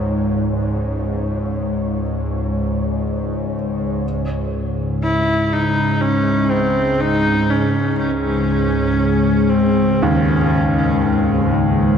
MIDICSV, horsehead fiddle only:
0, 0, Header, 1, 2, 480
1, 0, Start_track
1, 0, Tempo, 500000
1, 11500, End_track
2, 0, Start_track
2, 0, Title_t, "Horsehead fiddle"
2, 0, Program_c, 0, 110
2, 4834, Note_on_c, 0, 64, 86
2, 5304, Note_on_c, 0, 63, 83
2, 5319, Note_off_c, 0, 64, 0
2, 5769, Note_on_c, 0, 61, 90
2, 5784, Note_off_c, 0, 63, 0
2, 6245, Note_on_c, 0, 60, 86
2, 6259, Note_off_c, 0, 61, 0
2, 6722, Note_on_c, 0, 63, 99
2, 6736, Note_off_c, 0, 60, 0
2, 7199, Note_on_c, 0, 61, 84
2, 7213, Note_off_c, 0, 63, 0
2, 7660, Note_off_c, 0, 61, 0
2, 7666, Note_on_c, 0, 61, 80
2, 9113, Note_on_c, 0, 60, 70
2, 9127, Note_off_c, 0, 61, 0
2, 9622, Note_on_c, 0, 61, 73
2, 9636, Note_off_c, 0, 60, 0
2, 11066, Note_off_c, 0, 61, 0
2, 11500, End_track
0, 0, End_of_file